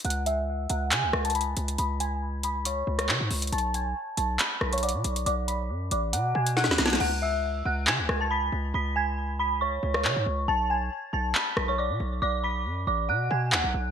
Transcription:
0.05 808-style bass C#2, synth bell F#5 F#6, closed hi-hat
0.10 closed hi-hat
0.26 synth bell E5 E6, closed hi-hat
0.70 808-style bass C#2, synth bell F#5 F#6, closed hi-hat
0.92 808-style bass C#3, synth bell G#5 G#6, clap, closed hi-hat
1.03 808-style bass C#2
1.13 808-style bass C#2, cross-stick
1.25 synth bell A5 A6, closed hi-hat
1.30 closed hi-hat
1.35 synth bell B5 B6, closed hi-hat
1.41 closed hi-hat
1.57 808-style bass C#2, closed hi-hat
1.68 closed hi-hat
1.78 808-style bass C#2, synth bell B5 B6, closed hi-hat
2.00 synth bell G#5 G#6, closed hi-hat
2.43 synth bell B5 B6, closed hi-hat
2.65 synth bell C#5 C#6, closed hi-hat
2.87 808-style bass C#2
2.99 synth bell C#5 C#6, cross-stick, closed hi-hat
3.09 808-style bass C#3, clap
3.20 808-style bass G#2
3.31 808-style bass C#2, open hi-hat
3.42 closed hi-hat
3.47 closed hi-hat
3.52 808-style bass B1, synth bell A5 A6, closed hi-hat
3.58 closed hi-hat
3.74 synth bell G#5 G#6, closed hi-hat
4.17 808-style bass B1, synth bell A5 A6, closed hi-hat
4.39 synth bell B5 B6, clap, closed hi-hat
4.61 808-style bass B1, cross-stick
4.73 synth bell C#5 C#6, closed hi-hat
4.78 closed hi-hat
4.83 synth bell D5 D6, closed hi-hat
4.89 closed hi-hat
4.94 808-style bass B2
5.04 808-style bass B1, closed hi-hat
5.16 closed hi-hat
5.26 808-style bass B1, synth bell D5 D6, closed hi-hat
5.48 synth bell B5 B6, closed hi-hat
5.70 808-style bass F#2
5.91 808-style bass A1, synth bell D5 D6, closed hi-hat
6.13 808-style bass B2, synth bell F#5 F#6, closed hi-hat
6.35 808-style bass B2, synth bell G#5 G#6
6.47 closed hi-hat
6.57 synth bell F#5 F#6, snare
6.64 snare
6.68 808-style bass D2, snare
6.78 808-style bass B1, snare, closed hi-hat
6.86 snare
6.90 snare, closed hi-hat
6.95 closed hi-hat
7.00 808-style bass C#2, synth bell F#5 F#6, crash
7.22 synth bell E5 E6
7.65 808-style bass C#2, synth bell F#5 F#6
7.87 808-style bass C#3, synth bell G#5 G#6, clap
7.99 808-style bass C#2
8.09 808-style bass C#2, cross-stick
8.21 synth bell A5 A6
8.31 synth bell B5 B6
8.52 808-style bass C#2
8.74 808-style bass C#2, synth bell B5 B6
8.96 synth bell G#5 G#6
9.39 synth bell B5 B6
9.61 synth bell C#5 C#6
9.83 808-style bass C#2
9.94 synth bell C#5 C#6, cross-stick
10.05 808-style bass C#3, clap
10.16 808-style bass G#2
10.26 808-style bass C#2
10.48 808-style bass B1, synth bell A5 A6
10.70 synth bell G#5 G#6
11.13 808-style bass B1, synth bell A5 A6
11.35 synth bell B5 B6, clap
11.57 808-style bass B1, cross-stick
11.68 synth bell C#5 C#6
11.78 synth bell D5 D6
11.90 808-style bass B2
12.00 808-style bass B1
12.22 808-style bass B1, synth bell D5 D6
12.44 synth bell B5 B6
12.65 808-style bass F#2
12.87 808-style bass A1, synth bell D5 D6
13.09 808-style bass B2, synth bell F#5 F#6
13.31 808-style bass B2, synth bell G#5 G#6
13.52 808-style bass D2, synth bell F#5 F#6, clap
13.64 808-style bass B1
13.74 808-style bass B1

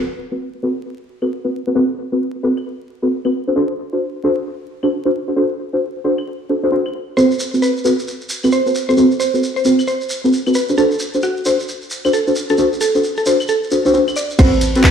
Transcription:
0.32 synth stab C4 F#4 A4 B4
0.63 synth stab C4 F#4 A4 B4
1.22 synth stab C4 F#4 A4 B4, claves
1.45 synth stab C4 F#4 A4 B4
1.67 synth stab C4 F#4 A4 B4
1.75 synth stab C4 F#4 A4 B4
2.12 synth stab C4 F#4 A4 B4
2.43 synth stab C4 F#4 A4 B4
2.57 claves
3.02 synth stab C4 F#4 A4 B4
3.25 synth stab C4 F#4 A4 B4, claves
3.47 synth stab D4 F#4 A4 C5
3.56 synth stab D4 F#4 A4 C5
3.93 synth stab D4 F#4 A4 C5
4.24 synth stab D4 F#4 A4 C5
4.83 synth stab D4 F#4 A4 C5, claves
5.05 synth stab D4 F#4 A4 C5
5.28 synth stab D4 F#4 A4 C5
5.36 synth stab D4 F#4 A4 C5
5.73 synth stab D4 F#4 A4 C5
6.04 synth stab D4 F#4 A4 C5
6.18 claves
6.49 synth stab D4 F#4 A4 C5
6.63 synth stab D4 F#4 A4 C5
6.72 synth stab D4 F#4 A4 C5
6.86 claves
7.17 synth stab C4 F#4 A4 B4, synth pluck C5, shekere
7.31 shekere
7.40 shekere
7.54 synth stab C4 F#4 A4 B4, shekere
7.62 synth pluck B4, shekere
7.77 shekere
7.84 synth stab C4 F#4 A4 B4, shekere
7.99 shekere
8.08 shekere
8.21 shekere
8.29 shekere
8.44 synth stab C4 F#4 A4 B4, claves, shekere
8.52 synth pluck C5, shekere
8.66 synth stab C4 F#4 A4 B4, shekere
8.75 shekere
8.89 synth stab C4 F#4 A4 B4, synth pluck C5, shekere
8.97 synth stab C4 F#4 A4 B4, shekere
9.11 shekere
9.20 synth pluck C5, shekere
9.34 synth stab C4 F#4 A4 B4, shekere
9.43 shekere
9.56 synth pluck C5, shekere
9.65 synth stab C4 F#4 A4 B4, shekere
9.79 claves, shekere
9.87 synth pluck C5, shekere
10.01 shekere
10.10 shekere
10.24 synth stab C4 F#4 A4 B4, shekere
10.33 shekere
10.47 synth stab C4 F#4 A4 B4, claves, shekere
10.54 synth pluck B4, shekere
10.69 synth stab D4 F#4 A4 C5, shekere
10.78 synth stab D4 F#4 A4 C5, synth pluck A4, shekere
10.91 shekere
10.99 shekere
11.14 synth stab D4 F#4 A4 C5, shekere
11.22 synth pluck F#4, shekere
11.37 shekere
11.45 synth stab D4 F#4 A4 C5, shekere
11.60 shekere
11.68 shekere
11.82 shekere
11.90 shekere
12.05 synth stab D4 F#4 A4 C5, claves, shekere
12.13 synth pluck A4, shekere
12.27 synth stab D4 F#4 A4 C5, shekere
12.36 shekere
12.49 synth stab D4 F#4 A4 C5, synth pluck A4, shekere
12.58 synth stab D4 F#4 A4 C5, shekere
12.73 shekere
12.81 synth pluck A4, shekere
12.95 synth stab D4 F#4 A4 C5, shekere
13.04 shekere
13.17 synth pluck A4, shekere
13.26 synth stab D4 F#4 A4 C5, shekere
13.40 claves, shekere
13.48 synth pluck A4, shekere
13.63 shekere
13.71 synth stab D4 F#4 A4 C5, shekere
13.85 synth stab D4 F#4 A4 C5, shekere
13.94 synth stab D4 F#4 A4 C5, shekere
14.08 claves, shekere
14.16 synth pluck D5, shekere
14.30 shekere
14.39 fm bass A1, synth stab C4 F#4 A4 B4, synth pluck C5, kick, closed hi-hat, crash, shekere
14.53 shekere
14.61 open hi-hat, shekere
14.75 synth stab C4 F#4 A4 B4, closed hi-hat, shekere
14.84 synth pluck B4, kick, clap, shekere

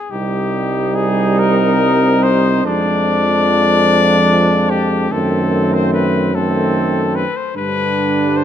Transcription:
Already playing: cornet G#4
0.11 tuba C2, trombone G3, euphonium C4, flugelhorn D#4, cornet G4
0.95 cornet G#4
1.39 cornet A#4
2.23 cornet C5
2.65 tuba F2, trombone F3, euphonium G#3, flugelhorn D4, cornet D5
4.70 cornet G4
5.10 tuba F#2, trombone D#3, euphonium A3, flugelhorn C4, cornet A4
5.74 cornet C5
5.94 cornet B4
6.34 trombone D#3, euphonium A3, flugelhorn C4, cornet A4
7.15 cornet B4
7.37 cornet C5
7.55 tuba G2, trombone D3, euphonium G3, flugelhorn D4, cornet B4
8.37 cornet C5

